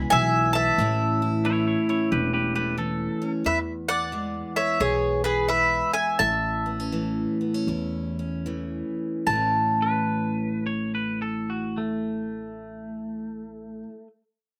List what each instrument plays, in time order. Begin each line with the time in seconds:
Already playing: steel-string acoustic guitar E2 B2 E3 G#3 B3 E4
0.10 upright bass B1, steel-string acoustic guitar E3, mandolin E5 G#5
0.53 steel-string acoustic guitar B3, mandolin E5 A5
0.78 upright bass A1, steel-string acoustic guitar A2 E3 A3 C#4 E4
1.22 steel-string acoustic guitar E4
1.45 steel-string acoustic guitar E3, clean electric guitar E4 C#5
1.67 clean electric guitar E4 C#5
1.89 steel-string acoustic guitar C#4, clean electric guitar E4 C#5
2.12 upright bass E1, steel-string acoustic guitar E2, clean electric guitar G4 B4
2.33 clean electric guitar G4 B4
2.55 steel-string acoustic guitar A3, clean electric guitar G4 B4
2.78 steel-string acoustic guitar E3, clean electric guitar A4
3.22 steel-string acoustic guitar C#4
3.44 steel-string acoustic guitar E2, upright bass E2, mandolin B4 E5
3.88 steel-string acoustic guitar B3, mandolin D5 F#5
4.12 steel-string acoustic guitar E3 G#3
4.56 steel-string acoustic guitar B3, mandolin C#5 E5
4.80 upright bass B1, steel-string acoustic guitar B2 G#4, mandolin G#4 C#5
5.24 mandolin G#4 B4
5.49 steel-string acoustic guitar E3 G#3, mandolin B4 E5
5.93 mandolin E5 G#5
6.19 upright bass A1, steel-string acoustic guitar A2, mandolin E5 A5
6.66 steel-string acoustic guitar B3
6.80 steel-string acoustic guitar C#4
6.92 steel-string acoustic guitar E3 A3
7.41 steel-string acoustic guitar B3
7.54 steel-string acoustic guitar C#4
7.67 upright bass E2, steel-string acoustic guitar E2 E4
8.19 steel-string acoustic guitar C#4
8.46 steel-string acoustic guitar E3 A3
9.27 upright bass A1, steel-string acoustic guitar A2 E3, mandolin A5
9.31 steel-string acoustic guitar A3 C#4
9.35 steel-string acoustic guitar E4
9.82 clean electric guitar B4
10.66 clean electric guitar C#5
10.95 clean electric guitar B4
11.22 clean electric guitar A4
11.50 clean electric guitar F#4
11.78 clean electric guitar A3